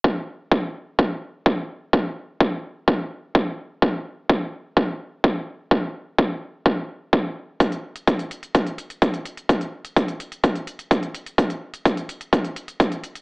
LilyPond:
\new DrumStaff \with { instrumentName = "Drums" } \drummode { \time 4/4 \tempo 4 = 127 bd4 bd4 bd4 bd4 | bd4 bd4 bd4 bd4 | bd4 bd4 bd4 bd4 | bd4 bd4 bd4 bd4 |
<hh bd>16 hh8 hh16 <hh bd>16 hh16 hh16 hh16 <hh bd>16 hh16 hh16 hh16 <hh bd>16 hh16 hh16 hh16 | <hh bd>16 hh8 hh16 <hh bd>16 hh16 hh16 hh16 <hh bd>16 hh16 hh16 hh16 <hh bd>16 hh16 hh16 hh16 | <hh bd>16 hh8 hh16 <hh bd>16 hh16 hh16 hh16 <hh bd>16 hh16 hh16 hh16 <hh bd>16 hh16 hh16 hh16 | }